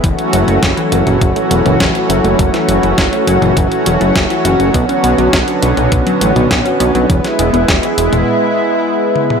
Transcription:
<<
  \new Staff \with { instrumentName = "Analog synth pad" } { \time 4/4 \key fis \minor \tempo 4 = 102 << { <fis cis' fis'>1~ | <fis cis' fis'>1~ | <fis cis' fis'>1 | e'1 | } \\ { <e a>1~ | <e a>1 | <d b>1 | gis1 | } >> }
  \new Staff \with { instrumentName = "Synth arpeggio sound" } { \clef bass \time 4/4 \key fis \minor e16 r16 fis16 a16 fis16 e16 e16 r16 fis16 a16 fis16 e16 e16 r16 fis16 a16 | fis16 e16 e16 r16 fis16 a16 fis16 e16 e16 r16 fis16 a16 fis16 e16 e16 r16 | b16 cis'16 b16 fis16 fis16 r16 b16 cis'16 b16 fis16 fis16 r16 b16 cis'16 b16 fis16 | e16 r16 gis16 b16 gis16 e16 e16 r2 r16 | }
  \new Staff \with { instrumentName = "Analog synth bass" } { \clef bass \time 4/4 \key fis \minor fis,,16 r16 fis,,16 fis,,16 fis,,16 r16 fis,,16 fis,,16 fis,,16 r16 e,,16 fis,,16 fis,,16 r16 fis,,16 fis,,16 | fis,,16 r16 fis,,16 fis,,16 fis,,16 r16 fis,,16 fis,,16 fis,,16 r16 e,,16 fis,,16 fis,,16 r16 fis,,16 fis,,16 | b,,16 r16 b,,16 b,,16 b,,16 r16 b,,16 b,,16 b,,16 r16 a,,16 b,,16 b,,16 r16 b,,16 b,,16 | e,,16 r16 e,,16 e,,16 e,,16 r16 e,,16 e,,16 r2 | }
  \new DrumStaff \with { instrumentName = "Drums" } \drummode { \time 4/4 <hh bd>16 hh16 hh16 hh16 <hh bd sn>16 hh16 hh16 <hh toml>16 <hh bd>16 hh16 hh16 <hh toml>16 <hh bd sn>16 hh16 hh16 hh16 | <hh bd>16 <hh sn>16 hh16 hh16 <hh bd sn>16 hh16 hh16 <hh toml>16 <hh bd>16 hh16 hh16 hh16 <hh bd sn>16 hh16 hh16 hh16 | <hh bd>16 hh16 hh16 hh16 <hh bd sn>16 hh16 hh16 <hh toml>16 <hh bd>16 hh16 hh16 <hh toml>16 <hh bd sn>16 hh16 hh16 hh16 | <hh bd>16 <hh sn>16 hh16 hh16 <hh bd sn>16 hh16 hh16 <hh toml>16 r4 r8 tommh16 toml16 | }
>>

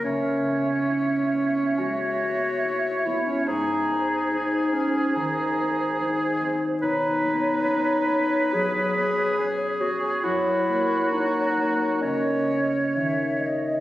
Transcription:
<<
  \new Staff \with { instrumentName = "Flute" } { \time 4/4 \key cis \dorian \tempo 4 = 70 e''1 | bis'1 | cis''1 | cis''2 dis''4 e''8 dis''8 | }
  \new Staff \with { instrumentName = "Oboe" } { \time 4/4 \key cis \dorian cis''1 | gis'1 | b'2. gis'4 | fis'2 cis''4. r8 | }
  \new Staff \with { instrumentName = "Clarinet" } { \time 4/4 \key cis \dorian cis'2 fis'4. e'16 cis'16 | dis'4. cis'8 dis'4. r8 | dis'2 gis'4. fis'8 | e'4 dis'4 cis'4. r8 | }
  \new Staff \with { instrumentName = "Harp" } { \time 4/4 \key cis \dorian <cis cis'>8 b8 e'8 b8 gis8 b8 e'8 b8 | gis,8 bis'8 dis'4 dis8 bis8 dis'8 bis8 | b,8 b8 cis'8 b8 fis8 b8 cis'8 b8 | fis,8 ais8 cis'8 ais8 cis8 cis'8 dis8 cis'8 | }
>>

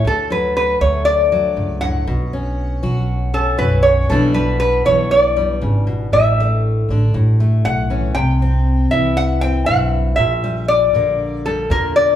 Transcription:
<<
  \new Staff \with { instrumentName = "Resonator guitar played with a steel bar" } { \time 4/4 \key d \major \tempo 4 = 118 a'8 b'8 b'8 cis''8 d''4. fis''8~ | fis''2 r8 a'8 b'8 cis''8 | a'8 b'8 b'8 cis''8 d''2 | e''2 r4 fis''4 |
g''4. e''8 fis''8 g''8 fis''4 | e''4 d''4. a'8 bes'8 d''8 | }
  \new Staff \with { instrumentName = "Steel-string acoustic guitar" } { \clef bass \time 4/4 \key d \major << { r8 fis4 a4 fis4.~ | fis8 cis'4 fis'4 cis'8 fis'4 | <e g b d'>8 g4 b4 g4. | r8 a4 d'8 r8 a4 cis'8 |
r8 c'4 e'4 c'8 e'4 | r8 g4 bes4 g8 bes4 | } \\ { d,2. g,8 a,8 | b,4. fis4. fis,4 | b,4. e4. cis8 b,8 | a,4. d8 a,4. e8 |
c4. e4. g,4 | bes,4. d4. bes,4 | } >> }
  \new Staff \with { instrumentName = "Upright bass" } { \clef bass \time 4/4 \key d \major d,4. d,4. cis,4 | b,,4. b,,4. b,,4 | b,,4. b,,4. gis,,4 | a,,4. a,,8 a,,4 b,,4 |
c,4. c,4. b,,4 | bes,,4. bes,,4. e,4 | }
>>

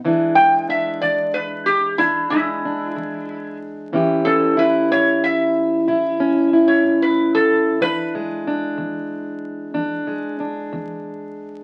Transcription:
<<
  \new Staff \with { instrumentName = "Resonator guitar played with a steel bar" } { \time 12/8 \key e \mixolydian \tempo 4. = 62 r8 g''8 e''8 d''8 b'8 g'8 e'8 e'2 r8 | r8 a'8 b'8 cis''8 e''2~ e''16 cis''8 b'8 a'8. | b'8 r1 r4. | }
  \new Staff \with { instrumentName = "Steel-string acoustic guitar" } { \clef bass \time 12/8 \key e \mixolydian << { <e gis d'>8 gis8 d'2 d'8 gis8 d'2 | <e cis' e' g'>8 cis'8 e'2 e'8 cis'8 e'2 | d'8 gis8 d'2 d'8 gis8 d'2 | } \\ { e,4 r8 e,4 r8 e,4 r8 e,4 r8 | a,4 r8 a,4 r8 a,4 r8 a,4 r8 | e,4 r8 e,4 r8 e,4 r8 e,4 r8 | } >> }
>>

